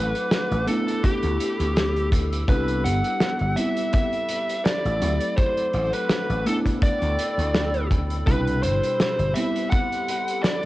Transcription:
Already playing: A1 F#3 A3 C4 E4 A4 B4 F#5 D6
0.15 closed hi-hat
0.31 snare, closed hi-hat
0.51 A1, closed hi-hat
0.66 A3 B3 D4 E4 G4 A4 B5 E6, closed hi-hat
0.88 closed hi-hat
1.03 G4, kick, closed hi-hat
1.23 D2, closed hi-hat
1.40 closed hi-hat
1.60 D2, closed hi-hat
1.76 snare, closed hi-hat
1.96 closed hi-hat
2.12 kick, closed hi-hat
2.33 closed hi-hat
2.48 C2 G3 B3 D4 E4 B4, kick, closed hi-hat
2.68 closed hi-hat
2.84 G1 F#5, closed hi-hat
3.04 closed hi-hat
3.20 snare, closed hi-hat
3.39 G1, closed hi-hat
3.56 G3 B3 C4 E4 A4 E5 B5, closed hi-hat
3.77 closed hi-hat
3.93 E5, kick, closed hi-hat
4.13 closed hi-hat
4.29 closed hi-hat
4.49 closed hi-hat
4.65 D5, snare, closed hi-hat
4.85 A1, closed hi-hat
5.00 D2 F#3 A3 C4 E4 F#5 D6, closed hi-hat
5.21 closed hi-hat
5.37 C5, kick, closed hi-hat
5.57 closed hi-hat
5.74 A1, closed hi-hat
5.93 B4, closed hi-hat
6.10 snare, closed hi-hat
6.29 A1, closed hi-hat
6.45 A3 B3 D4 E4 A4 G5 B5 E6, closed hi-hat
6.66 kick, closed hi-hat
6.82 D5, kick, closed hi-hat
7.02 D2, closed hi-hat
7.19 closed hi-hat
7.38 D2, closed hi-hat
7.55 snare, closed hi-hat
7.74 closed hi-hat
7.91 kick, closed hi-hat
8.10 closed hi-hat
8.26 C2 B2 G3 D4 E4 G4 B4 E6, kick, closed hi-hat
8.48 closed hi-hat
8.63 G1 C5, closed hi-hat
8.84 closed hi-hat
9.00 snare, closed hi-hat
9.19 G1, closed hi-hat
9.34 G3 B3 C4 A4 E5 C6, closed hi-hat
9.38 E4
9.56 closed hi-hat
9.70 F#5, kick, closed hi-hat
9.92 closed hi-hat
10.08 closed hi-hat
10.28 closed hi-hat
10.42 D5, snare, closed hi-hat

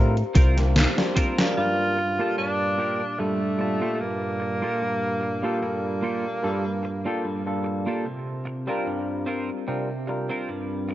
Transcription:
Already playing: A2 G3 C4 D4 F4 G4 A#4 C5 F5 A#5
0.17 closed hi-hat
0.35 C2 C4 F4 A#4, kick, closed hi-hat
0.57 G3 A#3 C4 D4 F4, snare, closed hi-hat
0.76 snare, closed hi-hat
0.97 G3 A#3 C4 D4 F4, snare, closed hi-hat
1.16 C4 F4 A#4, kick, closed hi-hat
1.38 G3 A#3 D4 F4 A#4, snare, closed hi-hat
1.57 G2 A#2 F4 G4 D5 A5
1.97 muted clean electric guitar stroke
2.18 G3 A#3 D4 F4 G4 A4 A5
2.38 G2 D4
2.78 A#3 F4 G4 A#4, closed hi-hat
3.18 G2 G3 A3 A#3 D4 F4 A4
3.58 A#2 G3 D4 F4 A5, muted clean electric guitar stroke, closed hi-hat
3.81 A#3 F4 G4 A4
4.00 G2 A#3, closed hi-hat
4.40 muted clean electric guitar stroke, closed hi-hat
4.62 A#3 F4 G4 A4
4.81 G2
5.21 muted clean electric guitar stroke, closed hi-hat
5.42 G3 A#3 D4 F4 G4 A4, closed hi-hat
5.62 G2 A#3, closed hi-hat
5.84 closed hi-hat
6.02 A#3 F4 G4 A4, closed hi-hat
6.25 closed hi-hat
6.42 G2 G3 A#3 D4 F4 A4, closed hi-hat
6.83 muted clean electric guitar stroke, closed hi-hat
7.05 G3 A#3 D4 F4 G4 A4, closed hi-hat
7.24 G2, closed hi-hat
7.46 G3 A#3 D4 F4 A4, closed hi-hat
7.64 muted clean electric guitar stroke, closed hi-hat
7.86 A#3 F4 G4 A4, closed hi-hat
8.05 C3 C4 G4 A#4 F5, closed hi-hat
8.27 closed hi-hat
8.45 muted clean electric guitar stroke, closed hi-hat
8.67 G3 C4 D4 F4 A#4, closed hi-hat
8.86 G2, closed hi-hat
9.09 closed hi-hat
9.26 C4 F4 A#4, closed hi-hat
9.49 closed hi-hat
9.67 C3 G3 C4 D4 F4 A#4, closed hi-hat
9.90 closed hi-hat
10.07 G3 C4 D4 F4 A#4, muted clean electric guitar stroke, closed hi-hat
10.29 C4 F4 A#4, closed hi-hat
10.49 G2, closed hi-hat
10.71 closed hi-hat
10.89 muted clean electric guitar stroke, closed hi-hat

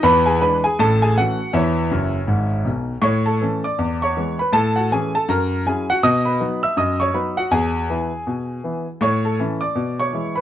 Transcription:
0.03 E2 E3 B4 B5
0.26 G#4 G#5
0.41 E3 G#3 D4 B4 B5
0.64 G#4 G#5
0.79 A1 A2 A4 A5
1.02 G#4 G#5
1.17 E3 A3 C#4 F#4 F#5
1.53 E2 E3 E4 C#5 E5
1.91 F#1 F#2
2.27 G#1 G#2
2.65 B1 B2
3.02 A2 C#5 C#6
3.26 A4 A5
3.41 E3 A3 C#4
3.64 D5 D6
3.79 E2
4.02 C#5 C#6
4.17 E3 G#3 B3
4.39 B4 B5
4.53 A2 A4 A5
4.76 F#4 F#5
4.91 E3 A3 C#4 G#4 G#5
5.15 A4 A5
5.29 F#2 A#4 A#5
5.66 F#3 C#4 E4 G#4 G#5
5.90 F#4 F#5
6.03 B2 D#5 D#6
6.25 B4 B5
6.40 F#3 B3 D#4
6.63 E5 E6
6.77 F#2 D#5 D#6
7.00 C#5 C#6
7.14 F#3 B3 D#4 B4 B5
7.37 F#4 F#5
7.51 E2 G#4 G#5
7.90 E3 B3 E4
8.27 B2
8.64 E3 B3 E4
9.01 A2 C#5 C#6
9.25 A4 A5
9.39 E3 C#4 E4
9.61 D5 D6
9.75 B2
10.00 C#5 C#6
10.13 E3 G#3 E4
10.36 B4 B5

